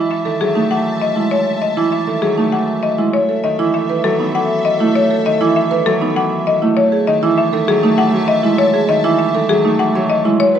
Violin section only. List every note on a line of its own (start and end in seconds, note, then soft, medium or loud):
0.00 2.94 E5 medium
0.00 2.94 A5 medium
3.13 6.58 A4 medium
3.13 6.58 E5 medium
6.77 10.21 E5 medium
6.77 10.22 A5 medium
10.40 10.59 G#4 medium
10.40 10.59 B4 medium